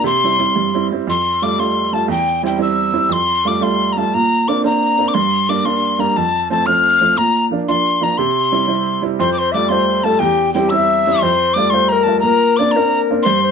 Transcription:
0.04 upright piano C3, tin whistle C6
0.24 upright piano G3 C4 E4
0.39 upright piano G3 C4 E4
0.56 upright piano G2
0.74 upright piano G3 C4 E4
0.92 upright piano G3 C4 E4
1.07 upright piano F2, tin whistle C6
1.42 upright piano G3 A3 F4, tin whistle D6
1.59 upright piano G3 A3 F4, tin whistle C6
1.93 upright piano G3 A3 F4, tin whistle A5
2.08 upright piano E2, tin whistle G5
2.43 upright piano G3 C4 E4, tin whistle G5
2.58 upright piano G3 C4 E4, tin whistle E6
2.93 upright piano G3 C4 E4
3.09 upright piano F2, tin whistle C6
3.45 upright piano G3 A3 F4, tin whistle D6
3.61 upright piano G3 A3 F4, tin whistle C6
3.92 upright piano A3, tin whistle A#5
3.97 upright piano G3 F4, tin whistle A5
4.14 upright piano A#2, tin whistle A#5
4.48 upright piano A#3 C4 D4, tin whistle D6
4.64 upright piano A#3 C4 D4, tin whistle A#5
4.98 upright piano A#3 C4 D4
5.08 tin whistle D6
5.14 upright piano G2, tin whistle C6
5.49 upright piano G3 A#3 D4, tin whistle D6
5.65 upright piano G3 A#3 D4, tin whistle C6
5.99 upright piano G3 A#3 D4, tin whistle A#5
6.16 upright piano F2, tin whistle A5
6.50 upright piano F3 A3 C4, tin whistle A5
6.66 upright piano F3 A3 C4, tin whistle F6
7.01 upright piano F3 A3 C4
7.17 upright piano A#2, tin whistle A#5
7.51 upright piano F3 A#3 D4
7.68 upright piano F3 A#3 D4, tin whistle C6
8.01 upright piano F3 A#3 D4, tin whistle A#5
8.18 upright piano C3, tin whistle C6
8.52 upright piano G3 C4 E4
8.67 upright piano G3 C4 E4
9.02 upright piano G3 C4 E4
9.19 upright piano F2, flute C5, tin whistle C6
9.33 tin whistle D6
9.39 flute C5, tin whistle C6
9.52 upright piano G3 A3 F4, flute E5, tin whistle D6
9.56 flute D5
9.69 upright piano G3 A3 F4, flute C5, tin whistle C6
10.04 upright piano G3 A3 F4, flute A4, tin whistle A5
10.19 upright piano E2, flute G4, tin whistle G5
10.54 upright piano G3 C4 E4, flute A4, tin whistle G5
10.58 flute G4
10.70 upright piano G3 C4 E4, tin whistle E6
10.74 flute E5
11.07 upright piano G3 C4 E4
11.20 upright piano F2, flute C5, tin whistle C6
11.54 upright piano G3 A3 F4, tin whistle D6
11.59 flute D5
11.70 upright piano G3 A3 F4, tin whistle C6
11.74 flute C5
11.89 flute A#4, tin whistle A#5
12.03 upright piano G3 A3, tin whistle A5
12.08 upright piano F4
12.20 upright piano A#2, tin whistle A#5
12.24 flute A#4
12.56 upright piano A#3 C4 D4, flute D5, tin whistle D6
12.71 tin whistle A#5
12.75 upright piano A#3 C4 D4, flute A#4
13.11 upright piano A#3 C4 D4
13.23 upright piano G2, flute C5, tin whistle C6
13.43 flute C5

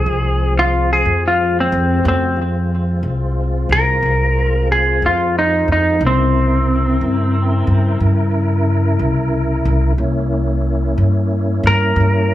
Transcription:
Already playing: tonewheel organ F3 G#3 C4, electric slide guitar G#4
0.06 upright bass C2
0.59 electric slide guitar F4
0.93 electric slide guitar G#4
1.05 upright bass F2
1.28 electric slide guitar F4
1.60 electric slide guitar C4
1.72 upright bass F2
2.04 upright bass F2, tonewheel organ C#3 A3 F#4
2.08 electric slide guitar C4
2.37 tonewheel organ G#3 C4 F4
3.03 upright bass C2
3.69 upright bass C2, electric slide guitar A#4
4.03 upright bass C2
4.72 electric slide guitar G#4
5.02 upright bass F2, electric slide guitar F4
5.39 electric slide guitar D#4
5.68 upright bass F2
5.72 electric slide guitar D#4
5.99 upright bass C2, tonewheel organ C#3 E4 A#4
6.07 electric slide guitar C4
7.01 upright bass G2
7.67 upright bass G2
8.00 upright bass G2
8.99 upright bass C2
9.65 upright bass C2
9.98 upright bass C2, tonewheel organ A#3 C#4 E4
10.98 upright bass G2
11.63 upright bass G2, electric slide guitar A#4
11.96 upright bass G2

